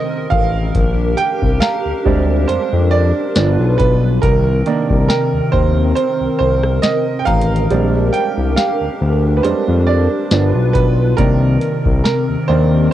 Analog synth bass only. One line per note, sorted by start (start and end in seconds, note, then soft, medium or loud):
0.32 0.71 A1 medium
0.75 1.15 A#1 loud
1.42 1.60 C2 medium
1.85 1.93 D2 soft
2.06 2.45 D2 medium
2.49 2.58 F2 medium
2.72 3.12 F2 medium
3.36 3.57 G1 loud
3.59 3.78 B1 medium
3.79 4.19 B1 loud
4.23 4.63 C2 loud
4.90 5.08 C2 medium
5.33 5.41 D#2 medium
5.53 5.93 D#2 medium
6.20 6.28 C2 medium
6.40 6.80 C2 medium
7.27 7.67 A1 medium
7.71 8.10 A#1 loud
8.37 8.56 C2 medium
8.81 8.89 D2 soft
9.01 9.41 D2 medium
9.44 9.54 F2 medium
9.68 10.08 F2 medium
10.31 10.53 G1 loud
10.55 10.73 B1 medium
10.75 11.15 B1 loud
11.18 11.58 C2 loud
11.85 12.04 C2 medium
12.29 12.37 D#2 medium
12.49 12.89 D#2 medium